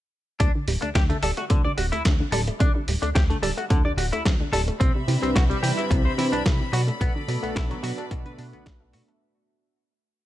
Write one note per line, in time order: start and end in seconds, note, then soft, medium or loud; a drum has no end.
0.40 0.49 D2 medium
0.40 0.48 C3 medium
0.40 0.51 D4 medium
0.40 kick loud
0.40 closed hi-hat medium
0.55 0.62 D3 medium
0.68 0.77 D1 medium
0.68 0.76 G3 medium
0.68 open hi-hat loud
0.82 0.93 D2 soft
0.82 0.89 A3 medium
0.82 0.89 D4 medium
0.82 closed hi-hat soft
0.95 1.12 D2 medium
0.95 1.00 C3 medium
0.95 1.03 G4 medium
0.95 kick loud
0.95 snare loud
0.95 closed hi-hat medium
1.10 1.20 D3 medium
1.10 1.16 A3 medium
1.10 closed hi-hat soft
1.22 1.31 D1 medium
1.22 1.31 G3 loud
1.22 1.30 A4 medium
1.22 open hi-hat medium
1.37 1.42 A3 medium
1.37 1.44 F#4 medium
1.37 closed hi-hat soft
1.50 1.68 D2 medium
1.50 1.58 C3 medium
1.50 1.61 D3 medium
1.50 kick loud
1.50 closed hi-hat medium
1.65 1.72 D3 medium
1.65 1.71 D5 medium
1.77 1.92 D1 medium
1.77 1.86 G3 medium
1.77 1.85 F#4 medium
1.77 open hi-hat loud
1.92 2.03 D2 soft
1.92 1.99 A3 medium
1.92 2.02 E4 medium
1.92 closed hi-hat soft
2.05 2.23 D2 medium
2.05 2.10 C3 medium
2.05 kick loud
2.05 snare loud
2.05 closed hi-hat medium
2.20 2.30 D3 medium
2.32 2.50 D1 medium
2.32 2.41 G3 loud
2.32 2.40 A4 medium
2.32 open hi-hat loud
2.47 2.52 A3 medium
2.47 closed hi-hat soft
2.60 2.69 D2 medium
2.60 2.68 C3 medium
2.60 2.71 D4 medium
2.60 kick loud
2.60 closed hi-hat medium
2.76 2.82 D3 medium
2.87 2.96 D1 medium
2.87 2.96 G3 medium
2.87 open hi-hat loud
3.02 3.13 D2 soft
3.02 3.09 A3 medium
3.02 3.09 D4 medium
3.02 closed hi-hat soft
3.15 3.33 D2 medium
3.15 3.20 C3 medium
3.15 3.23 G4 medium
3.15 kick loud
3.15 snare loud
3.15 closed hi-hat medium
3.30 3.41 D3 medium
3.30 3.36 A3 medium
3.30 closed hi-hat soft
3.42 3.51 D1 medium
3.42 3.51 G3 loud
3.42 3.50 A4 loud
3.42 open hi-hat loud
3.57 3.62 A3 medium
3.57 3.64 F#4 medium
3.57 closed hi-hat soft
3.70 3.84 D2 medium
3.70 3.78 C3 medium
3.70 3.81 D3 medium
3.70 kick loud
3.70 closed hi-hat medium
3.84 3.95 D1 soft
3.84 3.92 D3 medium
3.84 3.91 D5 medium
3.97 4.11 D1 medium
3.97 4.06 G3 medium
3.97 4.05 F#4 medium
3.97 open hi-hat loud
4.12 4.23 D2 soft
4.12 4.20 A3 medium
4.12 4.22 E4 medium
4.12 closed hi-hat medium
4.25 4.43 D2 medium
4.25 4.30 C3 medium
4.25 kick loud
4.25 snare loud
4.25 closed hi-hat medium
4.40 4.51 D3 medium
4.52 4.70 D1 medium
4.52 4.61 G3 loud
4.52 4.60 A4 loud
4.52 open hi-hat loud
4.68 4.72 A3 medium
4.68 closed hi-hat soft
4.80 4.89 C2 medium
4.80 4.88 B2 medium
4.80 6.71 G3 medium
4.80 4.91 C4 medium
4.80 6.71 C4 medium
4.80 6.71 E5 medium
4.80 9.17 B5 medium
4.80 kick loud
4.80 closed hi-hat medium
4.96 5.02 C3 medium
5.08 5.17 C3 medium
5.08 5.16 E3 medium
5.08 5.33 G3 medium
5.08 5.33 C4 medium
5.08 5.33 D4 medium
5.08 5.33 E4 medium
5.08 5.34 B4 medium
5.08 open hi-hat loud
5.22 5.33 C2 soft
5.22 5.29 G3 medium
5.22 5.29 C4 medium
5.22 closed hi-hat soft
5.35 5.53 C2 medium
5.35 5.40 B2 medium
5.35 5.43 F#4 medium
5.35 kick loud
5.35 snare loud
5.35 closed hi-hat medium
5.50 5.60 C3 medium
5.50 5.56 G3 medium
5.50 closed hi-hat soft
5.63 5.72 C3 medium
5.63 5.71 E3 loud
5.63 5.80 G3 medium
5.63 5.80 C4 medium
5.63 5.80 D4 medium
5.63 5.80 E4 medium
5.63 5.70 G4 loud
5.63 5.80 B4 medium
5.63 open hi-hat loud
5.77 5.82 G3 medium
5.77 5.84 E4 medium
5.77 closed hi-hat soft
5.90 6.08 C2 medium
5.90 5.99 B2 medium
5.90 6.01 C3 medium
5.90 kick loud
5.90 closed hi-hat medium
6.05 6.12 C3 medium
6.05 6.12 C5 medium
6.18 6.32 C3 medium
6.18 6.26 E3 medium
6.18 6.35 G3 medium
6.18 6.35 C4 medium
6.18 6.35 D4 medium
6.18 6.26 E4 medium
6.18 6.35 E4 medium
6.18 6.35 B4 medium
6.18 open hi-hat loud
6.32 6.43 C2 soft
6.32 6.40 G3 medium
6.32 6.42 D4 medium
6.32 closed hi-hat medium
6.46 6.63 C2 medium
6.46 6.50 B2 medium
6.46 kick loud
6.46 snare loud
6.46 closed hi-hat medium
6.61 6.71 C3 medium
6.73 6.90 B2 medium
6.73 6.81 F#3 loud
6.73 9.18 B3 medium
6.73 6.81 F#4 medium
6.73 9.18 A4 medium
6.73 9.18 D5 medium
6.73 open hi-hat loud
6.87 6.92 A3 medium
6.87 closed hi-hat soft
7.01 7.10 B1 medium
7.01 7.09 B2 medium
7.01 7.12 B3 loud
7.01 kick loud
7.01 closed hi-hat medium
7.16 7.22 D3 medium
7.28 7.37 B2 medium
7.28 7.36 F#3 medium
7.28 7.53 A3 medium
7.28 7.53 B3 medium
7.28 7.54 D4 medium
7.28 7.54 F#4 medium
7.28 7.54 A4 loud
7.28 open hi-hat loud
7.43 7.53 B1 soft
7.43 7.50 A3 medium
7.43 7.49 B3 medium
7.43 closed hi-hat soft
7.55 7.73 B1 medium
7.55 7.60 B2 medium
7.55 7.63 E4 medium
7.55 kick loud
7.55 snare loud
7.55 closed hi-hat medium
7.70 7.80 D3 medium
7.70 7.77 F#3 medium
7.70 closed hi-hat soft
7.83 7.92 B2 medium
7.83 7.91 F#3 loud
7.83 7.99 A3 medium
7.83 8.00 B3 medium
7.83 8.00 D4 medium
7.83 7.91 F#4 loud
7.83 8.00 F#4 medium
7.83 8.00 B4 medium
7.83 open hi-hat loud
7.98 8.02 A3 medium
7.98 8.05 D4 medium
7.98 closed hi-hat soft
8.10 8.25 B1 medium
8.10 8.19 B2 medium
8.10 8.22 B2 loud
8.10 8.50 A3 medium
8.10 8.50 B3 medium
8.10 8.50 D4 medium
8.10 8.50 F#4 medium
8.10 8.50 B4 loud
8.10 kick loud
8.10 closed hi-hat medium
8.25 8.36 B2 soft
8.25 8.32 D3 medium
8.25 8.32 B4 medium
8.25 closed hi-hat soft
8.38 8.50 B2 loud
8.38 8.53 B2 medium
8.38 8.46 D4 medium
8.38 open hi-hat loud
8.53 8.64 B1 soft
8.53 8.60 D3 loud
8.53 8.68 A3 loud
8.53 8.68 B3 medium
8.53 8.63 B3 loud
8.53 8.68 D4 medium
8.53 8.68 F#4 medium
8.53 8.68 B4 loud
8.53 closed hi-hat soft
8.66 8.95 B1 medium
8.66 8.78 D4 medium
8.66 kick loud
8.66 snare loud
8.66 closed hi-hat medium
8.80 9.19 A3 medium
8.80 8.87 A3 loud
8.80 9.19 B3 medium
8.80 9.19 D4 medium
8.80 9.19 F#4 medium
8.80 9.20 E5 medium
8.93 9.02 B2 loud
8.93 8.98 A3 medium
8.93 9.01 F#4 loud
8.93 open hi-hat loud
9.08 9.15 A3 loud
9.08 closed hi-hat soft